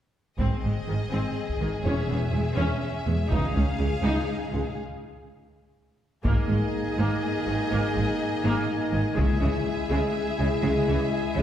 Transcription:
0.39 G#1 G#2 C4 G#4 D#5, taiko
0.63 G#1 G#2 G#3
0.88 G#1 G#2 D#3
1.12 G#1 G#2 C4
1.49 taiko
1.60 G#1 G#2 D#3
1.85 E1 E2 C#4 E5
2.09 E1 E2 B3
2.33 E1 E2 G#3
2.56 E1 E2 C#4
3.06 E1 E2 G#3
3.31 C#2 D#4 G#4 F5, taiko
3.55 C#2 C#4
3.79 C#2 G#3
4.04 C#2 D#4
4.53 C#2 G#3
6.24 G#1 G#2 G#3 A#3 D#4 G#4 A#4 D#5 G#5, taiko
6.48 G#1 G#2 G#3
6.98 G#1 G#2 A#3
7.47 G#1 G#2 D#3
7.72 G#1 G#2 A#3
7.95 G#1 G#2 G#3
8.44 G#1 G#2 A#3
8.92 G#1 G#2 D#3
9.15 C#2 C#3 G#3 E4 G#4, taiko
9.19 G#4 E5
9.41 C#2 C#3 E3
9.90 C#2 C#3 G#3
10.39 C#2 C#3
10.63 C#2 C#3 G#3
10.88 C#2 C#3 E3
11.36 C#2 C#3 G#3

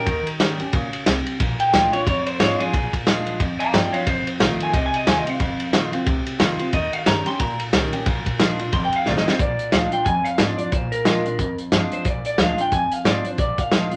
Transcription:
Already playing: A#4
0.06 D#2 D#3, kick, ride
0.26 muted upright bass stroke, ride
0.40 G#2 D#3 G3 C#4 G4, snare, ride
0.60 D#2 C#4 G4, ride
0.73 A#2 C#3, kick, ride
0.93 muted upright bass stroke, ride
1.06 C2 C3, snare, ride
1.26 ride
1.40 A#1 A#2, kick, ride
1.60 G5, ride
1.73 D2 F3 G#3 D4 F4, snare, ride
1.93 D4 F4 C#5, ride
2.07 F2 C#5, kick, ride
2.26 C5, muted upright bass stroke, ride
2.39 G#2 F3 G#3 D4 F4 C#5, snare, ride
2.60 D4 F4 G#4, ride
2.73 A#1 A#2, kick, ride
2.93 muted upright bass stroke, kick, ride
3.07 D#2 F3 G#3 D4 F4, snare, ride
3.27 A#1, ride
3.40 F2, kick, ride
3.59 F5 A#5, muted upright bass stroke, ride
3.73 G2 F3 G#3 D4 F4 D5 G5, snare, ride
3.93 D4 F4 C#5 F5, ride
4.07 F1 F2 C5, kick, ride
4.27 muted upright bass stroke, ride
4.40 A1 D#3 A3 C4 F4, snare, ride
4.60 G#5, muted upright bass stroke, ride
4.74 C2 C3 D#5, kick, ride
4.86 G#5
4.94 D#5, ride
5.06 D#2 D#3 A3 C4 F4 G#5, snare, ride
5.19 D#5
5.26 C4 F4 F5, ride
5.40 F1 F2, kick, ride
5.60 muted upright bass stroke, ride
5.73 A#1 D#3 A3 C4 F4, snare, ride
5.92 F1 C4 F4, ride
6.06 C2 C3, kick, ride
6.26 muted upright bass stroke, ride
6.39 F2 D#3 A3 C4 F4, snare, ride
6.59 C4 F4, ride
6.73 D#2 D#3 D#5, kick, ride
6.93 F5, muted upright bass stroke, ride
7.06 G2 D#3 G3 C#4 G4 A#5, snare, ride
7.26 C#4 G4 C6, muted upright bass stroke, snare, ride
7.40 A#2 A#5, kick, ride
7.59 muted upright bass stroke, ride
7.73 C2 D#3 G3 C#4 G4, snare, ride
7.93 C#4 G4, ride
8.06 A#1 A#2, kick, ride
8.26 muted upright bass stroke, kick, ride
8.39 D#2 F3 G#3 D4 F4, snare, ride
8.59 E1 D4 F4, ride
8.72 F1 F2 C6, kick, ride
8.85 G5
8.92 F5, muted upright bass stroke, ride
9.06 A1 D#3 A3 C4 F4 D5, snare
9.17 D#5, snare
9.26 C4 F4 C5, muted upright bass stroke, snare
9.39 A#1 A#2 D5, kick, closed hi-hat
9.59 muted upright bass stroke, closed hi-hat
9.72 D2 F3 G#3 D4 F4 F5, snare, closed hi-hat
9.92 D4 F4 G5, closed hi-hat
10.05 F2 G#5, kick, closed hi-hat
10.25 F5, muted upright bass stroke, closed hi-hat
10.38 G#2 F3 G#3 D4 F4 D5, snare, closed hi-hat
10.58 D4 F4 D5, closed hi-hat
10.72 A#1 A#2 C5, kick, closed hi-hat
10.92 A#4, muted upright bass stroke, closed hi-hat
11.05 D#2 F3 G#3 D4 F4, snare, closed hi-hat
11.25 A#1 D4 F4, closed hi-hat
11.39 F2, kick, closed hi-hat
11.58 muted upright bass stroke, closed hi-hat
11.72 G2 F3 G#3 D4 F4, snare, closed hi-hat
11.92 C5, muted upright bass stroke, closed hi-hat
12.05 A#1 A#2 D5, kick, closed hi-hat
12.25 D5, muted upright bass stroke, closed hi-hat
12.38 D2 F3 G#3 D4 F4 F5, snare, closed hi-hat
12.58 D4 F4 G5, muted upright bass stroke, closed hi-hat
12.72 F2 G#5, kick, closed hi-hat
12.91 F5, muted upright bass stroke, closed hi-hat
13.04 G#2 F3 G#3 D4 F4 D5, snare, closed hi-hat
13.25 D4 F4 C5, muted upright bass stroke, closed hi-hat
13.38 A#1 A#2 D5, kick, closed hi-hat
13.58 F5, muted upright bass stroke, kick, closed hi-hat
13.72 D#2 F3 G#3 D4 F4, snare, closed hi-hat
13.91 A#1 F4, closed hi-hat

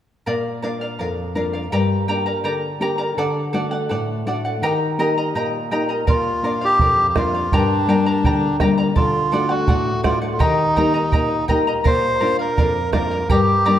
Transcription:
0.26 A#2 A#4 D5 F5
0.63 A#3 D4 F4 A#4 D5 F5
0.81 D5 F5
0.99 F2 A#4 D5 F5
1.35 A#3 D4 F4 A#4 D5 F5
1.53 D5 F5
1.72 G2 G4 A#4 D5 G5 A#5
2.08 A#3 D4 G4 A#4 D5 G5 A#5
2.26 A#4 D5 A#5
2.44 D3 A#4 D5 G5 A#5
2.80 A#3 D4 G4 A#4 D5 G5 A#5
2.98 A#4 D5 A#5
3.17 D3 A4 D5 F#5
3.53 A3 D4 F#4 A4 D5 F#5
3.71 D5 F#5
3.89 A2 A4 D5 F#5
4.26 A3 D4 F#4 A4 D5 F#5
4.45 D5 F#5
4.62 D#3 G4 A#4 D#5 G5 A#5
4.98 A#3 D#4 G4 A#4 D#5 G5 A#5
5.18 A#4 D#5 A#5
5.35 A#2 A#4 D#5 G5 A#5
5.71 A#3 D#4 G4 A#4 D#5 G5 A#5
5.89 A#4 D#5 A#5
6.07 A#2 F4 A#4 D5 F5, bombo low
6.43 A#3 D4 F4 A#4 D5 F5
6.61 G4 D5 F5
6.79 F2 A#4 D5 F5, bombo low
7.09 G4
7.16 A#3 D4 F4 A#4 D5 F5, bombo rim, bombo low
7.34 D5 F5
7.52 G2 D4 G4 A#4 D5 G5 A#5, bombo low
7.87 G3 A#3 D4 A#4 D5 G5 A#5
8.06 A#4 D5 A#5
8.24 D3 A#4 D5 G5 A#5, bombo low
8.60 G3 A#3 D4 A#4 D5 G5 A#5, bombo rim, bombo low
8.78 A#4 D5 A#5
8.96 D3 F4 A4 D5, bombo low
9.32 A3 D4 F#4 A4 D5 F#5
9.49 F#4 D5 F#5
9.67 A2 A4 D5 F#5, bombo low
10.04 A3 D4 F4 F#4 A4 D5 F#5, bombo rim, bombo low
10.22 D5 F#5
10.33 F4
10.39 D#3 D#4 G4 A#4 D#5 G5 A#5, bombo low
10.76 A#3 D#4 G4 A#4 D#5 G5 A#5, bombo low
10.94 A#4 D#5 A#5
11.12 A#2 A#4 D#5 G5 A#5, bombo low
11.48 A#3 D#4 G4 A#4 D#5 G5 A#5, bombo low
11.67 A#4 D#5 A#5
11.84 A#2 A#4 C5 D5 F5, bombo low
12.20 A#3 D4 F4 A#4 D5 F5
12.39 A#4 D5 F5
12.57 F2 A#4 D5 F5, bombo low
12.92 A#3 D4 F4 A#4 D5 F5, bombo rim, bombo low
13.11 D5 F5
13.29 G2 G4 A#4 D5 G5 A#5, bombo low
13.66 G3 A#3 D4 A#4 D5 G5 A#5

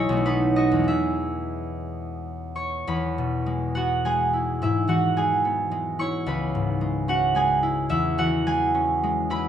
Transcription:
Already playing: G#3 B3 E4 G#4 C#5 D#5
0.09 B1 A3
0.17 B3
0.26 D#4 B4
0.56 F#4 D#5
0.72 E2 G#3
0.79 B3
0.84 E4 E5
0.89 G#4
2.56 C#5 C#6
2.87 E2 B4 B5
3.18 B2
3.46 G#3
3.75 B3 F#4 F#5
4.05 G#3 G#4 G#5
4.33 E4
4.62 G#2 E4 E5
4.88 E3 F#4 F#5
5.17 G#3 G#4 G#5
5.45 B3
5.71 G#3
5.99 E4 C#5 C#6
6.26 C#2 B4 B5
6.55 G#2
6.81 G#3
7.08 C#4 F#4 F#5
7.35 G#3 G#4 G#5
7.63 E4
7.89 E2 E4 E5
8.18 E3 F#4 F#5
8.47 G#3 G#4 G#5
8.74 C#4
9.03 G#3
9.30 E4 B4 B5

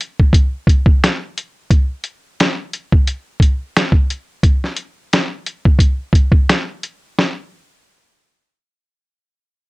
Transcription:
0.01 closed hi-hat
0.20 kick
0.33 kick, closed hi-hat
0.67 kick, closed hi-hat
0.86 kick
1.04 finger snap, snare, closed hi-hat
1.38 closed hi-hat
1.70 kick, closed hi-hat
2.04 closed hi-hat
2.40 finger snap, snare, closed hi-hat
2.73 closed hi-hat
2.92 kick
3.07 closed hi-hat
3.40 kick, closed hi-hat
3.77 finger snap, snare, closed hi-hat
3.92 kick
4.10 closed hi-hat
4.43 kick, closed hi-hat
4.64 snare
4.77 closed hi-hat
5.13 finger snap, snare, closed hi-hat
5.46 closed hi-hat
5.65 kick
5.79 kick, closed hi-hat
6.13 kick, closed hi-hat
6.32 kick
6.49 finger snap, snare, closed hi-hat
6.83 closed hi-hat
7.19 snare

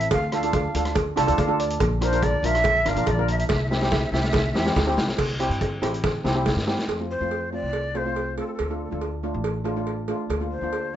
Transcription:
Already playing: C4 E4 A4 E5
0.00 closed hi-hat
0.11 D2 F5, kick, closed hi-hat, cowbell
0.32 D4 F4 A4 F5, cross-stick, closed hi-hat
0.43 D4 F4 A4, closed hi-hat
0.53 kick, closed hi-hat, cowbell
0.74 D2 D4 F4 A4, closed hi-hat
0.85 cross-stick, closed hi-hat
0.95 kick, closed hi-hat, cowbell
1.16 C2 D4 F4 A4 A5, cross-stick, closed hi-hat
1.27 D2 D4 F4 A4, closed hi-hat
1.38 D2 F5, kick, closed hi-hat, cowbell
1.48 D4 F4 A4
1.59 D5, closed hi-hat
1.70 closed hi-hat
1.80 A#1, kick, closed hi-hat, cowbell
2.01 D4 F4 A#4 C5, cross-stick, closed hi-hat
2.12 D4 F4 A#4, closed hi-hat
2.22 D5, kick, closed hi-hat, cowbell
2.43 A#1 D4 F4 A#4 E5, closed hi-hat
2.55 cross-stick, closed hi-hat
2.64 kick, closed hi-hat, cowbell
2.86 G1 D4 F4 A#4 F5, cross-stick, closed hi-hat
2.96 A#1 D4 F4 A#4, closed hi-hat
3.07 A#1 D5, kick, closed hi-hat, cowbell
3.18 D4 F4 A#4
3.28 E5, closed hi-hat
3.39 E5, closed hi-hat
3.48 C2 E5, kick, snare, cowbell
3.54 E5
3.63 E5
3.69 C4 E4 G4 E5, snare
3.77 E5
3.81 C4 E4 G4 E5, snare
3.90 E5, kick, snare, cowbell
3.98 E5
4.05 E5
4.12 C2 C4 E4 G4 E5, snare
4.20 E5, snare
4.28 E5
4.33 E5, kick, snare, cowbell
4.45 E5
4.52 E2 C4 E4 E5, snare
4.56 G4 E5
4.65 C4 E4 G4, snare
4.76 D2, kick, snare, cowbell
4.87 C4 E4 G4
4.97 C2, snare
5.08 snare
5.18 C2, kick, crash, cowbell
5.40 C4 E4 G4, cross-stick, closed hi-hat
5.50 G2, closed hi-hat
5.61 kick, closed hi-hat, cowbell
5.82 A1 C4 E4 G4, cross-stick, closed hi-hat, cowbell
5.94 closed hi-hat
6.04 kick, snare, cowbell
6.24 C2 C4 E4 G4, snare
6.35 C4 E4 G4
6.46 kick, snare, cowbell
6.56 G2, snare
6.67 C4 E4 G4, snare
6.79 snare
6.88 F2, cowbell
6.99 A3 C4 F4
7.11 C5
7.21 F2 A3 C4 F4
7.31 cowbell
7.52 A3 C4 F4 D5
7.62 C2
7.73 cowbell
7.94 A3 C4 F4 C5, cowbell
8.05 A3 C4 F4
8.16 cowbell
8.37 A3 C4 F4 A4, cowbell
8.47 A4
8.54 A4
8.59 D2 A4, cowbell
8.69 A3 D4 F4 A4
8.78 A4
8.84 A4
8.91 D2 A3 D4 F4 A4
9.01 cowbell
9.23 A3 D4 F4
9.34 A1
9.44 cowbell
9.64 A3 D4 F4, cowbell
9.76 A3 D4 F4
9.87 cowbell
10.08 A3 D4 F4, cowbell
10.30 D2, cowbell
10.41 A#3 D4 F4
10.51 C5
10.61 D2 A#3 D4 F4
10.73 cowbell

